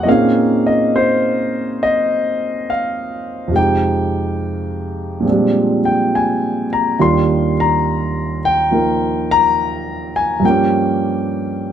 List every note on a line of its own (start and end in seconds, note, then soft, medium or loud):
0.03 3.51 A#2 soft
0.03 3.51 A#3 soft
0.03 0.07 D#5 medium
0.08 3.52 C4 soft
0.08 3.52 C#4 soft
0.08 3.53 D#4 soft
0.08 3.54 G#4 medium
0.08 0.67 F5 medium
0.67 0.95 D#5 medium
0.96 1.83 C5 medium
1.83 2.70 D#5 medium
2.70 3.56 F5 medium
3.48 5.22 F2 soft
3.48 5.24 C3 soft
3.54 5.23 G#3 soft
3.54 5.27 D#4 soft
3.54 5.80 G5 medium
3.59 5.28 G4 soft
5.20 6.95 A#2 soft
5.20 6.96 F3 soft
5.25 6.97 G#3 soft
5.25 6.98 C4 soft
5.29 6.98 G3 soft
5.29 6.99 D4 soft
5.85 6.11 G5 medium
6.15 6.67 G#5 medium
6.73 7.00 A#5 medium
6.99 10.44 D#2 soft
6.99 10.44 D#3 soft
6.99 10.44 G3 soft
6.99 10.44 D4 soft
6.99 10.44 F4 soft
6.99 7.53 C6 medium
7.60 8.40 A#5 medium
8.45 9.32 G5 medium
8.71 10.41 F3 soft
8.71 10.43 A#3 soft
8.71 10.44 D#4 soft
8.71 10.45 A#4 soft
9.31 10.12 A#5 medium
10.16 10.42 G#5 medium
10.40 11.72 G2 soft
10.40 11.72 F3 soft
10.45 11.72 A#3 soft
10.45 11.72 C#4 soft
10.45 11.72 G5 medium
10.50 11.72 G4 soft